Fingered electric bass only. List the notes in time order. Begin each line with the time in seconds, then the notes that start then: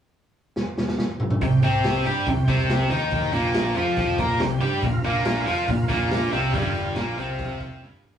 1.41 C2
1.64 C2
2.06 G2
2.27 C2
2.48 C2
2.90 D#2
3.33 A#1
3.75 F2
4.18 A#2
4.39 C2
4.61 G2
4.82 A#1
5.04 A#1
5.46 F2
5.68 A#1
5.90 A#1
6.32 C2
6.53 G1
6.97 A#1
7.17 C2
7.82 G1